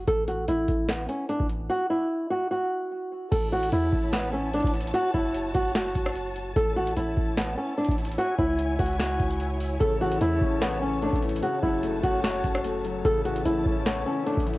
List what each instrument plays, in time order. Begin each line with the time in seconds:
0.08 808-style bass A1, nylon-string guitar A4, kick, closed hi-hat
0.28 nylon-string guitar F#4, closed hi-hat
0.48 808-style bass A1, nylon-string guitar E4, closed hi-hat
0.68 808-style bass A1, kick, closed hi-hat
0.89 nylon-string guitar B3, snare, closed hi-hat
1.09 nylon-string guitar C#4, closed hi-hat
1.29 nylon-string guitar D4, closed hi-hat
1.40 808-style bass A1, kick
1.49 closed hi-hat
1.70 nylon-string guitar F#4
1.90 nylon-string guitar E4
2.30 nylon-string guitar F#4
2.51 nylon-string guitar F#4
3.32 808-style bass A1, string section E4 C#5 A5, nylon-string guitar A4, kick, closed hi-hat, crash
3.52 nylon-string guitar F#4, closed hi-hat
3.63 closed hi-hat
3.72 808-style bass E2, nylon-string guitar E4, closed hi-hat
3.93 808-style bass A1, kick
4.13 nylon-string guitar B3, snare, closed hi-hat
4.33 nylon-string guitar C#4
4.53 nylon-string guitar D4, closed hi-hat
4.60 808-style bass A1, kick, closed hi-hat
4.67 closed hi-hat
4.74 closed hi-hat
4.80 closed hi-hat
4.87 closed hi-hat
4.94 nylon-string guitar F#4, string section F#4, closed hi-hat
5.14 808-style bass F#1, nylon-string guitar E4, kick
5.34 closed hi-hat
5.54 808-style bass F#1, nylon-string guitar F#4, kick, closed hi-hat
5.75 nylon-string guitar F#4, snare, closed hi-hat
5.95 808-style bass F#1, kick, closed hi-hat
6.06 cross-stick
6.15 closed hi-hat
6.36 closed hi-hat
6.56 808-style bass A1, string section E4 C#5, nylon-string guitar A4, kick, closed hi-hat
6.76 nylon-string guitar F#4, closed hi-hat
6.87 closed hi-hat
6.97 808-style bass A1, nylon-string guitar E4, closed hi-hat
7.17 808-style bass A1, kick
7.37 nylon-string guitar B3, snare, closed hi-hat
7.57 nylon-string guitar C#4
7.78 nylon-string guitar D4, closed hi-hat
7.85 closed hi-hat
7.89 808-style bass A1, kick, closed hi-hat
7.98 closed hi-hat
8.05 closed hi-hat
8.12 closed hi-hat
8.18 nylon-string guitar F#4, string section G#5, closed hi-hat
8.39 808-style bass C#2, nylon-string guitar E4, kick
8.59 closed hi-hat
8.79 808-style bass C#2, nylon-string guitar F#4, kick, closed hi-hat
8.86 closed hi-hat
8.93 closed hi-hat
8.99 nylon-string guitar F#4, snare, closed hi-hat
9.20 808-style bass C#2, kick, closed hi-hat
9.31 closed hi-hat
9.40 closed hi-hat
9.60 open hi-hat
9.80 808-style bass A1, grand piano C#3, nylon-string guitar A4, string section A5, kick, closed hi-hat
10.01 grand piano E3, nylon-string guitar F#4, closed hi-hat
10.12 closed hi-hat
10.20 808-style bass E2, grand piano A3, nylon-string guitar E4, closed hi-hat
10.41 808-style bass A1, grand piano C#4, kick
10.61 nylon-string guitar B3, grand piano C#5, snare, closed hi-hat
10.82 nylon-string guitar C#4, grand piano C#4
11.02 grand piano A3, nylon-string guitar D4, closed hi-hat
11.09 808-style bass A1, kick, closed hi-hat
11.16 closed hi-hat
11.22 grand piano E3, closed hi-hat
11.29 closed hi-hat
11.36 closed hi-hat
11.42 grand piano C#3, nylon-string guitar F#4, string section F#4 A5, closed hi-hat
11.63 808-style bass F#1, grand piano F#3, nylon-string guitar E4, kick
11.83 grand piano A3, closed hi-hat
12.03 808-style bass F#1, grand piano C#4, nylon-string guitar F#4, kick, closed hi-hat
12.24 nylon-string guitar F#4, grand piano C#5, snare, closed hi-hat
12.44 808-style bass F#1, grand piano C#4, kick, closed hi-hat
12.55 cross-stick
12.64 grand piano A3, closed hi-hat
12.84 grand piano F#3, closed hi-hat
13.05 808-style bass A1, grand piano C#3, string section E4 A5, nylon-string guitar A4, kick, closed hi-hat
13.25 grand piano E3, nylon-string guitar F#4, closed hi-hat
13.36 closed hi-hat
13.45 808-style bass A1, grand piano A3, nylon-string guitar E4, closed hi-hat
13.66 808-style bass A1, grand piano C#4, kick
13.86 nylon-string guitar B3, grand piano C#5, snare, closed hi-hat
14.06 nylon-string guitar C#4, grand piano C#4
14.26 grand piano A3, nylon-string guitar D4, closed hi-hat
14.33 closed hi-hat
14.37 808-style bass A1, kick, closed hi-hat
14.47 grand piano E3, closed hi-hat
14.54 closed hi-hat